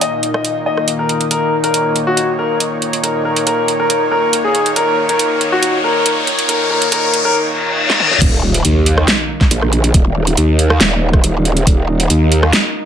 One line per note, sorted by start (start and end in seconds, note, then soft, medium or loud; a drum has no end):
0.00 8.18 A#2 medium
0.00 8.18 D#3 medium
0.00 8.18 A#3 medium
0.00 8.18 D#4 medium
0.00 1.27 D#5 medium
0.00 0.24 D#5 medium
0.00 closed hi-hat medium
0.23 closed hi-hat medium
0.34 0.57 D#5 medium
0.34 cross-stick medium
0.45 closed hi-hat medium
0.66 0.89 D#5 medium
0.77 cross-stick soft
0.88 closed hi-hat medium
0.99 1.22 A#4 medium
1.09 closed hi-hat medium
1.21 closed hi-hat medium
1.31 1.54 A#4 loud
1.31 8.18 C#5 medium
1.31 closed hi-hat medium
1.31 riser medium
1.64 1.94 A#4 medium
1.64 closed hi-hat soft
1.74 closed hi-hat medium
1.96 closed hi-hat medium
2.07 2.30 F#4 loud
2.17 closed hi-hat medium
2.39 2.62 A#4 medium
2.60 closed hi-hat medium
2.82 closed hi-hat soft
2.93 closed hi-hat soft
3.04 3.19 A#4 medium
3.04 closed hi-hat medium
3.25 3.41 A#4 medium
3.36 closed hi-hat medium
3.47 3.70 A#4 loud
3.47 closed hi-hat medium
3.68 closed hi-hat medium
3.80 4.02 A#4 loud
3.90 closed hi-hat medium
4.11 4.34 A#4 loud
4.33 closed hi-hat medium
4.44 4.67 G#4 medium
4.55 closed hi-hat soft
4.66 closed hi-hat soft
4.76 4.99 A#4 loud
4.76 closed hi-hat medium
5.09 5.39 A#4 medium
5.09 closed hi-hat medium
5.19 closed hi-hat medium
5.41 closed hi-hat medium
5.52 5.75 F#4 loud
5.63 closed hi-hat medium
5.84 6.07 A#4 loud
6.06 closed hi-hat medium
6.27 closed hi-hat medium
6.39 closed hi-hat soft
6.49 6.64 A#4 medium
6.49 closed hi-hat medium
6.70 6.86 A#4 medium
6.82 closed hi-hat medium
6.92 7.15 A#4 medium
6.92 closed hi-hat medium
7.14 closed hi-hat medium
7.25 7.35 A#4 loud
7.35 reverse cymbal medium
7.90 snare medium
8.00 mid tom medium
8.11 mid tom medium
8.22 8.63 D#1 loud
8.22 12.85 D#3 medium
8.22 12.85 A#3 medium
8.22 12.85 D#4 medium
8.22 kick loud
8.22 closed hi-hat medium
8.22 crash loud
8.22 impact medium
8.54 closed hi-hat medium
8.65 9.06 D#2 loud
8.65 closed hi-hat medium
8.86 closed hi-hat medium
8.98 cross-stick medium
9.08 snare loud
9.08 closed hi-hat medium
9.41 kick loud
9.41 snare soft
9.51 9.93 A#1 medium
9.51 closed hi-hat medium
9.62 cross-stick medium
9.73 closed hi-hat medium
9.84 closed hi-hat medium
9.94 10.36 D#1 medium
9.94 kick loud
9.94 closed hi-hat medium
10.27 closed hi-hat medium
10.37 10.79 D#2 loud
10.37 closed hi-hat medium
10.59 closed hi-hat medium
10.70 cross-stick medium
10.81 11.65 D#1 loud
10.81 snare loud
10.81 closed hi-hat medium
11.13 kick loud
11.13 cross-stick medium
11.24 closed hi-hat medium
11.45 closed hi-hat medium
11.57 closed hi-hat medium
11.67 12.08 D#1 loud
11.67 kick loud
11.67 closed hi-hat medium
12.00 closed hi-hat medium
12.10 12.52 D#2 loud
12.10 closed hi-hat medium
12.32 closed hi-hat medium
12.43 cross-stick medium
12.53 snare loud
12.53 closed hi-hat medium